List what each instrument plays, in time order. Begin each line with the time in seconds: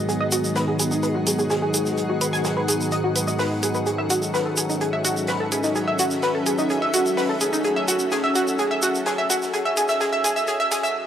Already playing: synth drone G#2 D#3, analog synth pad D#3 F#3 G#3 B3 F#4, ambient pad B3 G#4 D#5 F#5
0.09 synth pluck G#4, closed hi-hat, shaker
0.21 synth pluck D#5
0.32 synth pluck F#4, closed hi-hat, shaker
0.44 shaker
0.56 synth pluck B4, snare, closed hi-hat, shaker
0.68 synth pluck G#4
0.79 synth pluck G#4, closed hi-hat, shaker
0.91 synth pluck D#4, shaker
1.03 synth pluck B4, closed hi-hat, shaker
1.15 synth pluck F#4
1.27 synth pluck G#4, closed hi-hat, shaker
1.39 synth pluck G#4, shaker
1.50 synth pluck G#4, snare, closed hi-hat, shaker
1.62 synth pluck G#4
1.74 synth pluck G#4, closed hi-hat, shaker
1.86 snare, shaker
1.98 closed hi-hat, shaker
2.09 synth pluck F#4
2.21 synth pluck B4, closed hi-hat, shaker
2.33 synth pluck G#5, snare, shaker
2.44 synth pluck G#4, snare, closed hi-hat, shaker
2.57 synth pluck B4
2.68 synth pluck G#4, closed hi-hat, shaker
2.81 shaker
2.91 synth pluck D#5, closed hi-hat, shaker
3.04 synth pluck F#4
3.16 synth pluck B4, closed hi-hat, shaker
3.28 synth pluck D#5, closed hi-hat, shaker
3.38 synth pluck B4, snare, open hi-hat, shaker
3.63 synth pluck G#4, closed hi-hat, shaker
3.75 synth pluck B4, shaker
3.86 analog synth pad F#3 C#4 A4, ambient pad C#4, synth pluck G#4, closed hi-hat, shaker
3.98 synth pluck E5, ambient pad E5
4.09 synth pluck F#4, closed hi-hat, shaker
4.14 ambient pad A4
4.22 shaker
4.34 synth pluck B4, snare, closed hi-hat, shaker
4.46 synth pluck A4
4.57 synth pluck G#4, closed hi-hat, shaker
4.69 synth pluck D#4, shaker
4.81 synth pluck G#4, closed hi-hat, shaker
4.93 synth pluck E5
5.05 synth pluck F#4, closed hi-hat, shaker
5.17 shaker
5.27 synth pluck B4, snare, closed hi-hat, shaker
5.40 synth pluck A4
5.52 synth pluck G#4, closed hi-hat, shaker
5.64 synth pluck D#4, snare, shaker
5.76 synth pluck G#4, closed hi-hat, shaker
5.88 synth pluck E5
5.99 synth pluck F#4, closed hi-hat, shaker
6.10 snare, shaker
6.22 synth pluck B4, snare, closed hi-hat, shaker
6.35 synth pluck A4
6.46 synth pluck G#4, closed hi-hat, shaker
6.58 synth pluck D#4, shaker
6.70 synth pluck G#4, closed hi-hat, shaker
6.82 synth pluck E5
6.94 synth pluck F#4, closed hi-hat, shaker
7.05 closed hi-hat, shaker
7.17 synth pluck B4, snare, open hi-hat, shaker
7.29 synth pluck A4
7.41 synth pluck G#4, closed hi-hat, shaker
7.53 synth pluck D#4, shaker
7.64 synth pluck G#4, closed hi-hat, shaker
7.76 synth pluck E5
7.88 synth pluck F#4, closed hi-hat, shaker
7.99 shaker
8.11 synth pluck G#4, snare, closed hi-hat, shaker
8.24 synth pluck E5
8.35 synth pluck F#4, closed hi-hat, shaker
8.48 ambient pad D#5, shaker
8.59 synth pluck G#4, closed hi-hat, shaker
8.71 synth pluck E5
8.82 synth pluck F#4, closed hi-hat, shaker
8.95 shaker
9.06 synth pluck G#4, snare, closed hi-hat, shaker
9.18 synth pluck E5
9.30 synth pluck F#4, closed hi-hat, shaker
9.42 snare, shaker
9.53 synth pluck G#4, closed hi-hat, shaker
9.65 synth pluck E5
9.77 synth pluck G#4, closed hi-hat, shaker
9.88 synth pluck E5, snare, shaker
10.00 synth pluck G#4, snare, closed hi-hat, shaker
10.13 synth pluck E5
10.24 synth pluck G#4, closed hi-hat, shaker
10.36 synth pluck E5, shaker
10.47 synth pluck G#4, closed hi-hat, shaker
10.60 synth pluck E5
10.71 synth pluck G#4, snare, closed hi-hat, shaker
10.83 synth pluck E5, closed hi-hat, shaker